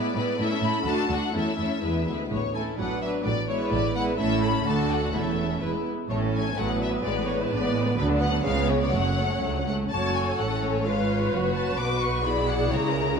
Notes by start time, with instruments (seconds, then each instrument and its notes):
Already playing: viola section G#3 B3, violin section E4 B4 D5
0.16 cello section A2, viola section G#3 B3, violin section E4 B4
0.39 cello section A2, viola section A3 C#4, violin section E4 A4 E5
0.62 cello section A2, viola section A3 C#4, violin section E4 A4 B5
0.85 cello section D2, viola section A3 D4, violin section F#4 A4 A5
1.09 cello section D2, viola section A3 D4, violin section F#4 A4 F#5
1.33 cello section E2, viola section A3 C#4, violin section E4 A4
1.38 violin section E5
1.57 cello section E2, viola section A3 C#4, violin section E4 A4
1.81 cello section E2, viola section G#3 B3, violin section E4 B4
2.07 cello section D2, viola section G#3 B3, violin section E4 B4
2.32 double bass section A1, cello section A2, violin section C#5
2.54 viola section A3 C#4, violin section E4 A4 G#5
2.79 double bass section A1, cello section A2, viola section F#3 B3, violin section D4 B4 F#5
3.02 viola section F#3 B3, violin section D4 B4 E5
3.24 double bass section A1, cello section A2, violin section D5
3.48 viola section G#3 B3, violin section E4 B4 C#5
3.71 double bass section A1, cello section A2, violin section D5
3.95 viola section G#3 B3, violin section E4 B4 F#5
4.18 double bass section A1, cello section A2, viola section A3 C#4, violin section E4 A4 E5
4.42 violin section B5
4.65 double bass section D2, cello section D2, viola section A3 D4, violin section F#4 A4 A5
4.92 violin section F#5
5.13 double bass section E1, cello section E2, viola section A3 C#4, violin section E4 A4 E5
5.61 double bass section E1, cello section E2, viola section G#3 B3, violin section E4 B4
6.09 double bass section A1, cello section A2, viola section A3 C#4, violin section A3 A4 C#5
6.22 violin section C#4
6.33 violin section E4 G#5
6.44 violin section C#4
6.55 double bass section A1, cello section A2, viola section F#3 B3, violin section A3 B4 F#5
6.68 violin section B3
6.80 violin section D4 E5
6.91 violin section B3
7.02 double bass section A1, cello section A2, violin section G#3 D5, viola section G#3
7.15 violin section B3
7.26 violin section D4 C#5
7.39 violin section E4
7.49 double bass section A1, cello section A2, violin section D4 D5
7.63 violin section B3
7.74 violin section G#3
7.86 violin section B3
7.96 double bass section D2, cello section D3, viola section F#3, violin section B3 B4
8.08 violin section D4
8.20 violin section B3 F#5
8.32 violin section D4
8.44 double bass section C#2, cello section C#3, violin section G#3 C#5 F5, viola section G#3 B3
8.55 violin section B3
8.68 violin section C#4 C#5
8.80 violin section B3 D5
8.91 double bass section F#1, cello section F#2, viola section F#3 A3, violin section A3 F#5
9.06 violin section C#4
9.18 violin section A3
9.31 violin section C#4
9.42 double bass section C#2, cello section D2, violin section A3
9.56 violin section C#4
9.67 cello section C#2, violin section A3 F#5
9.82 violin section C#4
9.91 double bass section F#1, cello section F#2, violin section F#4 A4 A5, viola section C#5
10.15 violin section G#5
10.37 double bass section A1, cello section A2, violin section C#4 F#5, viola section A4
10.61 violin section C#5
10.85 double bass section G#1, cello section G#2, violin section F4 C#5 F5, viola section B4
11.33 double bass section F#1, cello section F#2, violin section F#4
11.54 violin section A5
11.77 double bass section B1, cello section B2, violin section B4 D6
11.81 violin section F#4
12.01 violin section C#6
12.25 violin section E4 D5 B5, viola section G#4
12.48 violin section F#5
12.72 double bass section C#2, cello section C#3, violin section C#5 A#5
12.93 violin section A#4